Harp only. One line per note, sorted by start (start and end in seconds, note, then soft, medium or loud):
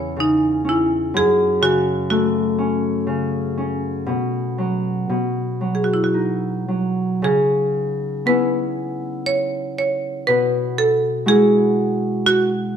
0.00 1.19 E2 medium
0.00 0.15 C#3 soft
0.00 0.23 E3 soft
0.00 0.64 C#4 soft
0.16 1.19 C#3 soft
0.65 2.58 C#4 soft
1.14 4.11 F#2 medium
1.61 3.05 C#3 soft
2.10 5.43 A3 soft
2.58 3.57 C#4 medium
3.07 4.11 C#3 soft
3.57 6.47 C#4 soft
4.06 5.08 B2 medium
4.58 5.12 F#3 soft
5.09 7.25 B2 medium
5.61 6.67 F#3 soft
6.14 8.33 D#4 soft
6.68 7.25 F#3 soft
7.22 10.31 C#3 medium
8.26 11.36 B3 soft
8.26 11.16 C#4 soft
8.26 10.88 E4 soft
10.28 12.77 B2 medium
11.26 12.77 G#3 soft
11.26 12.77 E4 soft
11.26 12.77 F#4 medium